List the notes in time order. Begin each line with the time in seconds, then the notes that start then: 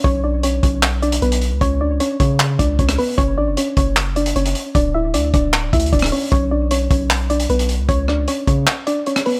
0.04 B1 C#4 C#5, kick, closed hi-hat
0.24 D4 D5
0.43 C#4 C#5, closed hi-hat
0.63 B1 C#4 C#5, kick, closed hi-hat
0.83 clap, closed hi-hat
1.02 D4 D5, closed hi-hat
1.12 closed hi-hat
1.22 B1 B3 B4, closed hi-hat
1.32 closed hi-hat
1.42 closed hi-hat
1.51 C#2
1.61 C#2 C#4 C#5, kick, closed hi-hat
1.81 D2 D4 D5
1.91 C#2
2.00 C#4 C#5, closed hi-hat
2.20 C#3 C#4 C#5, kick, closed hi-hat
2.40 clap, closed hi-hat
2.59 C#2 D4 D5, kick, closed hi-hat
2.79 C#2 C#4 C#5, kick, closed hi-hat
2.89 cross-stick, closed hi-hat
2.98 B3 B4, open hi-hat
3.18 F#1 C#4 C#5, kick, closed hi-hat
3.38 A1 D4 D5
3.47 F#1
3.57 C#4 C#5, closed hi-hat
3.77 F#1 C#4 C#5, kick, closed hi-hat
3.97 clap, closed hi-hat
4.16 D4 D5, closed hi-hat
4.26 closed hi-hat
4.36 F#1 C#4 C#5, closed hi-hat
4.46 closed hi-hat
4.55 closed hi-hat
4.75 D1 D4 D5, kick, closed hi-hat
4.94 E4 E5
5.14 D2 D4 D5, closed hi-hat
5.34 D1 D4 D5, kick, closed hi-hat
5.53 clap, closed hi-hat
5.73 D2 E4 E5, kick, closed hi-hat
5.80 closed hi-hat
5.86 closed hi-hat
5.93 D1 D4 D5, kick, closed hi-hat
5.99 cross-stick, closed hi-hat
6.06 closed hi-hat
6.12 C#4 C#5, open hi-hat
6.32 B1 C#4 C#5, kick, closed hi-hat
6.51 D4 D5
6.71 C#4 C#5, closed hi-hat
6.90 B1 C#4 C#5, kick, closed hi-hat
7.10 clap, closed hi-hat
7.30 D4 D5, closed hi-hat
7.40 closed hi-hat
7.49 B1 B3 B4, closed hi-hat
7.59 closed hi-hat
7.69 closed hi-hat
7.79 C#2
7.89 C#2 C#4 C#5, kick, closed hi-hat
8.08 D2 D4 D5, cross-stick
8.18 C#2
8.28 C#4 C#5, closed hi-hat
8.47 C#3 C#4 C#5, kick, closed hi-hat
8.67 clap, closed hi-hat
8.87 D4 D5, closed hi-hat
9.06 C#4 C#5, closed hi-hat
9.16 cross-stick, closed hi-hat
9.26 B3 B4, open hi-hat